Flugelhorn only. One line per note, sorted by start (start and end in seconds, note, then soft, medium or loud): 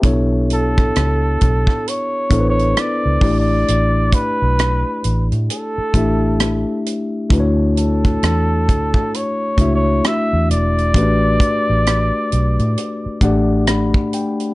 0.53 1.90 A4 medium
1.88 2.47 C#5 loud
2.50 2.81 C#5 medium
2.80 3.39 D5 loud
3.39 4.16 D5 medium
4.14 5.27 B4 medium
5.51 6.82 A4 medium
7.78 9.17 A4 medium
9.15 9.75 C#5 medium
9.75 10.08 C#5 loud
10.07 10.51 E5 loud
10.52 13.64 D5 loud